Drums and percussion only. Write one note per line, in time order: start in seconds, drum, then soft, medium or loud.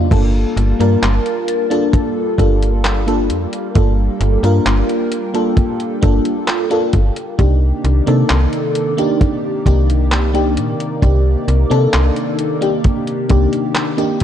0.11 kick loud
0.11 closed hi-hat medium
0.11 crash loud
0.57 closed hi-hat medium
0.81 closed hi-hat medium
1.03 clap loud
1.03 closed hi-hat medium
1.26 closed hi-hat soft
1.48 closed hi-hat medium
1.71 closed hi-hat medium
1.93 kick loud
1.93 closed hi-hat medium
2.38 kick medium
2.38 closed hi-hat medium
2.62 closed hi-hat medium
2.85 clap loud
2.85 closed hi-hat medium
3.08 closed hi-hat soft
3.30 closed hi-hat medium
3.53 closed hi-hat medium
3.75 kick loud
3.75 closed hi-hat medium
4.21 closed hi-hat medium
4.44 closed hi-hat medium
4.66 clap loud
4.66 closed hi-hat medium
4.89 closed hi-hat soft
5.12 closed hi-hat medium
5.35 closed hi-hat medium
5.57 kick loud
5.57 closed hi-hat medium
5.80 closed hi-hat soft
6.03 kick loud
6.03 closed hi-hat medium
6.25 closed hi-hat medium
6.48 clap loud
6.48 closed hi-hat medium
6.71 closed hi-hat soft
6.93 kick medium
6.93 closed hi-hat medium
7.16 closed hi-hat medium
7.39 kick loud
7.39 closed hi-hat medium
7.85 closed hi-hat medium
8.07 closed hi-hat medium
8.30 clap loud
8.30 closed hi-hat medium
8.53 closed hi-hat soft
8.75 closed hi-hat medium
8.98 closed hi-hat medium
9.21 kick loud
9.21 closed hi-hat medium
9.66 kick medium
9.66 closed hi-hat medium
9.90 closed hi-hat medium
10.12 clap loud
10.12 closed hi-hat medium
10.35 closed hi-hat soft
10.57 closed hi-hat medium
10.80 closed hi-hat medium
11.02 kick loud
11.02 closed hi-hat medium
11.48 closed hi-hat medium
11.71 closed hi-hat soft
11.93 clap loud
11.93 closed hi-hat medium
12.16 closed hi-hat soft
12.39 closed hi-hat medium
12.62 closed hi-hat medium
12.84 kick loud
12.84 closed hi-hat medium
13.07 closed hi-hat soft
13.29 kick loud
13.29 closed hi-hat medium
13.53 closed hi-hat medium
13.75 clap loud
13.75 closed hi-hat medium
13.98 closed hi-hat soft
14.20 closed hi-hat medium